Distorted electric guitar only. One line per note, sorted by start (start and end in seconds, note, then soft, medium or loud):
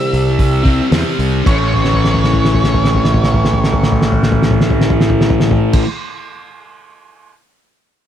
0.00 0.62 C3 medium
0.00 0.63 G3 loud
0.00 0.62 C4 medium
0.63 0.90 G3 medium
0.63 0.89 C4 medium
0.67 0.89 C3 medium
0.90 1.43 C3 medium
0.90 1.44 G3 medium
0.94 1.45 C4 medium
1.45 5.84 A2 medium
1.45 5.86 E3 medium
1.45 5.86 A3 medium